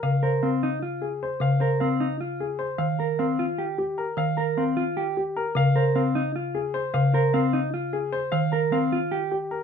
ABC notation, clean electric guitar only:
X:1
M:7/8
L:1/8
Q:1/4=152
K:Bbdor
V:1 name="Clean electric guitar"
z B C E F z2 | z B C E F z2 | z B C F G z2 | z B C F G z2 |
z B C E F z2 | z B C E F z2 | z B C F G z2 |]